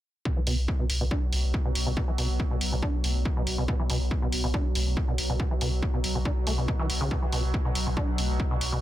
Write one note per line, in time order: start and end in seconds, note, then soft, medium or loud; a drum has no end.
0.25 0.32 B2 medium
0.25 8.81 B2 medium
0.25 8.81 F#3 medium
0.25 kick loud
0.37 0.40 E3 medium
0.47 0.57 B1 loud
0.47 0.56 B2 medium
0.47 open hi-hat loud
0.58 0.68 B1 medium
0.68 kick loud
0.79 0.85 B2 medium
0.90 1.00 B1 loud
0.90 open hi-hat loud
1.01 1.11 B1 medium
1.01 1.04 B2 medium
1.11 1.34 D4 medium
1.11 kick loud
1.32 1.43 B1 loud
1.32 1.55 A3 medium
1.32 open hi-hat loud
1.44 1.54 B1 medium
1.54 1.58 C#3 medium
1.54 kick loud
1.65 1.71 B2 medium
1.75 1.86 B1 loud
1.75 open hi-hat loud
1.86 1.97 B1 medium
1.86 1.92 B2 medium
1.97 2.03 B2 medium
1.97 kick loud
2.08 2.11 E3 medium
2.18 2.29 B1 loud
2.18 2.27 B2 medium
2.18 open hi-hat loud
2.29 2.39 B1 medium
2.40 kick loud
2.51 2.56 B2 medium
2.61 2.72 B1 loud
2.61 open hi-hat loud
2.72 2.82 B1 medium
2.72 2.76 B2 medium
2.82 3.06 D4 medium
2.82 kick loud
3.04 3.14 B1 loud
3.04 3.27 A3 medium
3.04 open hi-hat loud
3.15 3.25 B1 medium
3.25 3.29 C#3 medium
3.25 kick loud
3.37 3.42 B2 medium
3.47 3.57 B1 loud
3.47 open hi-hat loud
3.58 3.68 B1 medium
3.58 3.64 B2 medium
3.68 3.74 B2 medium
3.68 kick loud
3.79 3.83 E3 medium
3.90 4.00 B1 loud
3.90 3.99 B2 medium
3.90 open hi-hat loud
4.01 4.11 B1 medium
4.11 kick loud
4.22 4.28 B2 medium
4.32 4.43 B1 loud
4.32 open hi-hat loud
4.44 4.54 B1 medium
4.44 4.47 B2 medium
4.54 4.77 D4 medium
4.54 kick loud
4.75 4.86 B1 loud
4.75 4.98 A3 medium
4.75 open hi-hat loud
4.86 4.97 B1 medium
4.97 5.01 C#3 medium
4.97 kick loud
5.08 5.14 B2 medium
5.18 5.29 B1 loud
5.18 open hi-hat loud
5.29 5.39 B1 medium
5.29 5.35 B2 medium
5.40 5.46 B2 medium
5.40 kick loud
5.51 5.54 E3 medium
5.61 5.72 B1 loud
5.61 5.70 B2 medium
5.61 open hi-hat loud
5.72 5.82 B1 medium
5.82 kick loud
5.94 5.99 B2 medium
6.04 6.14 B1 loud
6.04 open hi-hat loud
6.15 6.25 B1 medium
6.15 6.19 B2 medium
6.25 6.31 D4 medium
6.25 kick loud
6.47 6.57 B1 loud
6.47 6.53 A3 medium
6.47 open hi-hat loud
6.58 6.68 B1 medium
6.58 6.66 B2 medium
6.68 6.74 B2 medium
6.68 kick loud
6.79 6.88 E3 loud
6.90 7.00 B1 loud
6.90 open hi-hat loud
7.01 7.11 B1 medium
7.01 7.09 C#3 loud
7.11 7.17 B2 medium
7.11 kick loud
7.22 7.26 E3 medium
7.32 7.43 B1 loud
7.32 7.42 B2 medium
7.32 open hi-hat loud
7.44 7.54 B1 medium
7.54 kick loud
7.65 7.71 B2 medium
7.75 7.86 B1 loud
7.75 open hi-hat loud
7.86 7.97 B1 medium
7.86 7.90 B2 medium
7.97 8.20 D4 medium
7.97 kick loud
8.18 8.29 B1 loud
8.18 8.41 A3 medium
8.18 open hi-hat loud
8.29 8.39 B1 medium
8.40 8.43 C#3 medium
8.40 kick loud
8.51 8.57 B2 medium
8.61 8.72 B1 medium
8.61 open hi-hat loud
8.72 8.81 B1 medium
8.72 8.78 B2 medium